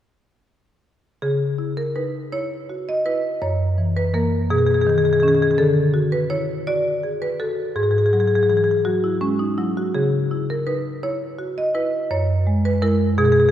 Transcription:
1.22 3.38 C#3 soft
1.22 1.75 G#4 medium
1.58 2.18 E4 soft
1.77 1.96 A#4 medium
1.96 2.33 D#4 soft
1.96 2.31 B4 medium
2.32 2.91 E4 soft
2.32 2.85 C#5 medium
2.70 3.06 F#4 soft
2.89 3.06 D#5 medium
3.06 3.42 E4 soft
3.06 3.41 B4 medium
3.42 4.47 F#2 soft
3.42 3.94 C#5 medium
3.78 4.13 E3 soft
3.97 4.15 B4 medium
4.14 4.47 E3 soft
4.14 4.47 A#3 soft
4.14 4.49 A#4 medium
4.50 5.55 B2 medium
4.50 4.58 G#4 medium
4.58 4.66 G#4 medium
4.66 4.74 G#4 medium
4.74 4.82 G#4 medium
4.82 4.89 G#4 medium
4.87 5.21 D#3 soft
4.87 4.98 G#4 medium
4.98 5.05 G#4 medium
5.05 5.13 G#4 medium
5.13 5.20 G#4 medium
5.20 5.55 D#3 soft
5.20 5.55 C#4 soft
5.20 5.28 G#4 medium
5.28 5.35 G#4 medium
5.35 5.42 G#4 medium
5.42 5.51 G#4 medium
5.51 5.54 G#4 medium
5.58 7.71 D3 medium
5.58 6.10 A4 medium
5.94 6.52 F#4 soft
6.12 6.30 B4 medium
6.30 6.66 E4 soft
6.30 6.65 C#5 medium
6.67 7.25 F#4 soft
6.67 7.19 D5 medium
7.03 7.40 G#4 soft
7.22 7.40 B4 medium
7.40 7.76 F#4 soft
7.40 7.74 A4 medium
7.76 9.90 G#2 soft
7.76 7.83 G#4 medium
7.83 7.91 G#4 medium
7.91 7.98 G#4 medium
7.98 8.06 G#4 medium
8.06 8.13 G#4 medium
8.13 8.71 F#3 soft
8.13 8.20 G#4 medium
8.20 8.28 G#4 medium
8.28 8.35 G#4 soft
8.35 8.43 G#4 medium
8.43 8.50 G#4 medium
8.50 8.86 E3 soft
8.50 8.57 G#4 medium
8.57 8.64 G#4 medium
8.64 8.71 G#4 medium
8.71 8.81 G#4 soft
8.85 9.43 F#3 soft
8.85 9.03 F#4 medium
9.04 9.22 E4 soft
9.21 9.58 G#3 soft
9.21 9.39 C#4 medium
9.39 9.58 D#4 soft
9.58 9.94 F#3 soft
9.58 9.76 E4 medium
9.77 9.95 F#4 soft
9.95 12.07 C#3 soft
9.95 10.47 G#4 medium
10.31 10.89 E4 soft
10.50 10.68 A#4 medium
10.67 11.03 D#4 soft
10.67 11.01 B4 medium
11.03 11.61 E4 soft
11.03 11.55 C#5 medium
11.39 11.75 F#4 soft
11.58 11.75 D#5 medium
11.75 12.11 E4 soft
11.75 12.09 B4 medium
12.11 13.15 F#2 medium
12.11 12.62 C#5 medium
12.47 12.81 G#3 soft
12.65 12.83 B4 medium
12.82 13.15 G#3 soft
12.82 13.15 E4 soft
12.82 13.17 A#4 medium
13.18 13.51 B2 medium
13.18 13.25 G#4 medium
13.25 13.32 G#4 medium
13.32 13.40 G#4 medium
13.40 13.51 G#4 medium

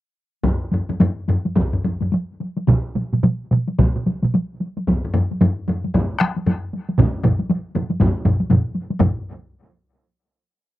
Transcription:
0.43 taiko medium
0.43 taiko low-mid medium
0.43 taiko high medium
0.72 taiko low-mid medium
0.72 taiko high soft
0.89 taiko low-mid medium
0.89 taiko high soft
1.00 taiko low-mid medium
1.00 taiko high medium
1.28 taiko low-mid medium
1.28 taiko high soft
1.45 taiko high soft
1.56 taiko medium
1.56 taiko low-mid medium
1.56 taiko high medium
1.73 taiko low-mid medium
1.85 taiko low-mid medium
1.85 taiko high soft
2.01 taiko low-mid medium
2.01 taiko high soft
2.12 taiko high medium
2.40 taiko high soft
2.57 taiko high soft
2.67 taiko medium
2.67 taiko mid medium
2.67 taiko high soft
2.96 taiko mid medium
2.96 taiko high soft
3.13 taiko mid medium
3.13 taiko high soft
3.23 taiko mid medium
3.23 taiko high medium
3.51 taiko mid medium
3.51 taiko high soft
3.68 taiko high soft
3.79 taiko medium
3.79 taiko mid medium
3.79 taiko high medium
3.96 taiko mid medium
4.06 taiko mid medium
4.06 taiko high medium
4.23 taiko mid medium
4.23 taiko high soft
4.34 taiko high medium
4.61 taiko high soft
4.77 taiko high soft
4.87 taiko medium
4.87 taiko low-mid medium
4.87 taiko high medium
5.04 taiko low-mid medium
5.14 taiko low-mid medium
5.14 taiko high soft
5.31 taiko high soft
5.41 taiko low-mid medium
5.41 taiko high medium
5.68 taiko low-mid medium
5.68 taiko high soft
5.84 taiko high soft
5.94 taiko medium
5.94 taiko low-mid medium
5.94 taiko high medium
6.20 taiko rim medium
6.20 taiko high medium
6.36 taiko high soft
6.46 taiko low-mid medium
6.46 taiko high medium
6.74 taiko high soft
6.89 taiko high soft
6.99 taiko medium
6.99 taiko low-mid medium
6.99 taiko mid loud
6.99 taiko high medium
7.24 taiko low-mid loud
7.24 taiko mid medium
7.24 taiko high soft
7.40 taiko high soft
7.50 taiko high medium
7.75 taiko low-mid medium
7.75 taiko mid medium
7.75 taiko high soft
7.90 taiko high soft
8.00 taiko loud
8.00 taiko low-mid medium
8.00 taiko mid medium
8.00 taiko high medium
8.25 taiko low-mid medium
8.25 taiko mid medium
8.25 taiko high soft
8.40 taiko high soft
8.50 taiko low-mid medium
8.50 taiko mid medium
8.50 taiko high medium
8.75 taiko high soft
8.90 taiko high soft
8.99 taiko medium
8.99 taiko low-mid medium
8.99 taiko mid loud
8.99 taiko high medium

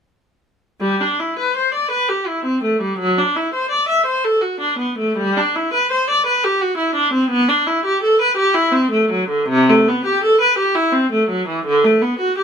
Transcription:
0.81 1.00 G3 medium
1.01 1.20 D4 medium
1.20 1.38 E4 medium
1.39 1.56 B4 medium
1.56 1.74 C5 medium
1.74 1.92 D5 medium
1.91 2.09 B4 medium
2.09 2.28 G4 medium
2.27 2.46 E4 medium
2.45 2.63 C4 medium
2.64 2.81 A3 medium
2.81 2.99 G3 medium
2.99 3.16 F#3 medium
3.18 3.35 D4 medium
3.36 3.53 E4 medium
3.54 3.71 C5 medium
3.71 3.88 D5 medium
3.89 4.06 E5 medium
4.06 4.23 C5 medium
4.24 4.42 A4 medium
4.41 4.60 F#4 medium
4.60 4.79 D4 medium
4.79 4.98 B3 medium
4.98 5.17 A3 medium
5.17 5.36 G3 medium
5.37 5.55 D4 medium
5.55 5.73 E4 medium
5.73 5.91 B4 medium
5.92 6.09 C5 medium
6.10 6.27 D5 medium
6.26 6.44 B4 medium
6.44 6.62 G4 medium
6.61 6.79 F#4 medium
6.77 6.95 E4 medium
6.95 7.13 D4 medium
7.13 7.31 C4 medium
7.30 7.48 B3 medium
7.49 7.67 D4 medium
7.67 7.85 E4 medium
7.85 8.02 G4 medium
8.03 8.20 A4 medium
8.21 8.38 B4 medium
8.37 8.55 G4 medium
8.54 8.73 E4 medium
8.72 8.91 C4 medium
8.91 9.10 A3 medium
9.11 9.30 F#3 medium
9.29 9.48 D3 medium
9.49 9.67 C3 loud
9.69 9.87 A3 medium
9.88 10.05 B3 medium
10.05 10.22 G4 medium
10.24 10.40 A4 medium
10.41 10.58 B4 medium
10.58 10.76 G4 medium
10.75 10.93 E4 medium
10.92 11.11 C4 medium
11.12 11.29 A3 medium
11.29 11.47 F#3 medium
11.48 11.65 E3 medium
11.66 11.83 D3 medium
11.85 12.02 A3 medium
12.02 12.19 B3 medium
12.19 12.36 F#4 medium
12.38 12.43 G4 medium

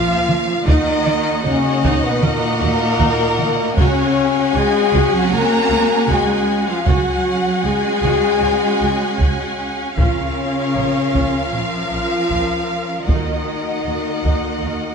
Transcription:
0.00 0.67 F3 medium
0.00 3.77 A#3 medium
0.00 0.62 C#4 medium
0.00 0.25 F4 medium
0.00 0.67 F4 medium
0.00 0.67 F4 loud
0.00 0.63 F5 medium
0.00 0.64 F5 loud
0.00 0.67 F5 medium
0.29 taiko mid soft
0.66 0.76 D#2 medium
0.66 1.43 D#3 medium
0.66 3.77 D#4 medium
0.66 1.03 D#4 medium
0.66 1.44 D#4 loud
0.66 3.75 F#4 medium
0.66 3.77 D#5 medium
0.66 1.43 D#5 medium
0.66 3.73 D#5 medium
0.66 3.74 F#5 medium
0.66 taiko loud
1.07 taiko mid medium
1.45 1.53 D#2 medium
1.45 2.03 C#3 medium
1.45 2.02 C#4 loud
1.45 1.53 F#4 medium
1.45 2.02 C#5 medium
1.84 1.92 D#2 medium
1.84 2.20 D#4 medium
1.84 taiko medium
2.03 2.22 B2 medium
2.03 2.23 B3 medium
2.03 2.22 B4 medium
2.22 2.31 D#2 medium
2.22 3.77 A#2 medium
2.22 3.78 A#3 loud
2.22 2.31 A#4 medium
2.22 3.78 A#4 loud
2.22 taiko mid medium
2.61 2.69 D#2 medium
2.61 2.70 F#4 medium
2.99 3.07 D#2 medium
2.99 3.36 D#4 medium
2.99 taiko medium
3.39 taiko mid medium
3.77 3.85 C#2 medium
3.77 4.53 C#3 medium
3.77 6.85 C#4 medium
3.77 4.54 C#4 loud
3.77 6.85 F#4 medium
3.77 4.14 F#4 medium
3.77 6.85 G#4 medium
3.77 4.53 C#5 medium
3.77 6.84 F#5 medium
3.77 6.86 G#5 medium
3.77 taiko loud
4.54 4.63 C#2 medium
4.54 5.12 G#3 medium
4.54 4.62 G#4 medium
4.54 5.13 G#4 loud
4.54 5.13 G#5 medium
4.93 5.02 C#2 medium
4.93 5.29 F#4 medium
4.93 taiko medium
5.13 5.32 F#3 medium
5.13 5.33 F#4 medium
5.13 5.32 F#5 medium
5.31 5.40 C#2 soft
5.31 6.10 A#3 medium
5.31 6.09 A#4 loud
5.31 5.39 C#5 medium
5.31 6.09 A#5 loud
5.69 5.79 C#2 medium
5.69 5.77 G#4 medium
6.08 6.17 C#2 medium
6.08 6.68 G#3 medium
6.08 6.45 F#4 medium
6.08 6.67 G#4 medium
6.08 6.68 G#5 medium
6.08 taiko medium
6.68 6.87 F3 medium
6.68 6.87 F4 medium
6.68 6.87 F5 medium
6.86 6.95 C#2 medium
6.86 7.63 F#3 medium
6.86 13.04 C#4 medium
6.86 7.23 F#4 medium
6.86 9.93 F#4 medium
6.86 7.65 F#4 medium
6.86 9.93 G#4 medium
6.86 7.64 F#5 medium
6.86 9.93 F#5 medium
6.86 9.93 G#5 medium
6.86 taiko loud
7.64 7.73 C#2 medium
7.64 9.59 G#3 medium
7.64 7.72 G#4 soft
7.64 9.59 G#4 loud
7.64 9.59 G#5 medium
8.03 8.11 C#2 medium
8.03 8.39 F#4 medium
8.03 taiko medium
8.42 8.51 C#2 soft
8.42 8.50 C#5 medium
8.81 8.89 C#2 soft
8.81 8.90 G#4 medium
9.20 9.28 C#2 medium
9.20 9.57 F#4 medium
9.20 taiko medium
9.96 10.06 A#1 medium
9.96 11.49 C#3 medium
9.96 11.49 C#4 medium
9.96 13.08 F4 medium
9.96 10.34 F4 medium
9.96 14.95 A#4 medium
9.96 11.49 C#5 medium
9.96 13.07 F5 medium
9.96 13.04 F5 medium
9.96 taiko medium
10.76 10.84 A#1 soft
10.76 10.84 A#4 soft
11.14 11.22 A#1 medium
11.14 11.50 F4 medium
11.14 taiko medium
11.51 11.61 A#1 soft
11.51 13.08 F3 medium
11.51 13.09 F4 medium
11.51 11.59 C#5 soft
11.51 13.08 F5 medium
11.91 12.00 A#1 soft
11.91 11.99 A#4 soft
12.30 12.39 A#1 soft
12.30 12.66 F4 soft
12.30 taiko medium
13.07 13.17 D#2 soft
13.07 14.20 D#3 medium
13.07 14.95 D#3 medium
13.07 14.95 A#3 medium
13.07 13.44 D#4 medium
13.07 14.95 D#4 medium
13.07 14.95 F#4 soft
13.07 14.95 D#5 medium
13.07 14.95 D#5 soft
13.07 14.95 F#5 soft
13.07 taiko medium
13.86 13.95 D#2 soft
13.86 13.94 F#4 soft
14.25 14.33 D#2 soft
14.25 14.61 D#4 soft
14.25 taiko medium
14.64 14.72 D#2 soft
14.64 14.72 A#4 soft

